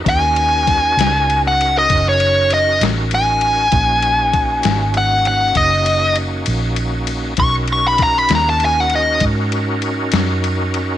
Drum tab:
RD |xxxxxxxxxxxx|xxxxxxxxxxxx|xxxxxxxxxxxx|
SD |--oo-----o--|---o--------|--oo-----o--|
BD |o-o---o-----|o-o---o-----|o-o---o-----|